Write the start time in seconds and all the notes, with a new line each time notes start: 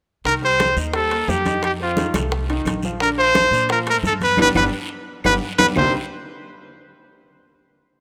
0.24 C2 D#3 D#4 A#4, high bongo, high conga, long guiro
0.42 G3 G4 C5, high bongo, high conga
0.59 high bongo, high conga, high timbale, short guiro, claves
0.76 D#2 D#4 D#5, high bongo, high conga, short guiro
0.94 G3 G4 A4, high bongo, high conga, high timbale, long guiro
1.11 A#3 A#4, high bongo, high conga, high timbale, claves
1.28 F2 G4, high bongo, low bongo, high conga, low timbale, short guiro
1.45 D#4 D#5, high conga, high timbale, short guiro
1.63 G4, high bongo, high conga, high timbale, long guiro, claves
1.80 C4 F4 C5, high bongo, high conga
1.97 D#3 D#4, high bongo, high conga, high timbale, short guiro
2.14 C2 A3 A4, high bongo, high conga, high timbale, short guiro, claves
2.31 high bongo, high conga, long guiro
2.49 D#3 D#4, high bongo, high conga, high timbale
2.65 A#1, high bongo, low bongo, high conga, high timbale, short guiro, claves
2.82 F3 F4, high conga, short guiro
3.00 D3 D4 A#4, high bongo, high conga, long guiro
3.18 F3 F4 C5, high bongo, high conga
3.35 high bongo, high conga, high timbale, short guiro, claves
3.51 A#2 D4 D5, high bongo, high conga, short guiro
3.69 F3 F4 A#4, high bongo, high conga, high timbale, long guiro
3.86 A3 A4 A#4, high bongo, high conga, high timbale, claves
4.03 G2, high bongo, low bongo, high conga, short guiro
4.07 A4
4.21 B3 B4, high conga, high timbale, short guiro
4.37 G1 G3 B3 D4, low bongo, high conga, high timbale, long guiro, claves
4.42 B4
4.55 G1 G3 B3 D4 B4, low bongo, high conga, high timbale, long guiro, claves
5.24 G1 G3 B3 D4 B4, low bongo, high conga, high timbale, long guiro, claves
5.58 G1 G3 B3 D4 B4, low bongo, high conga, high timbale, long guiro, claves
5.75 C2 C3 G3 A#3 C4 D4 D#4 C5, low bongo, low conga, low timbale, long guiro, claves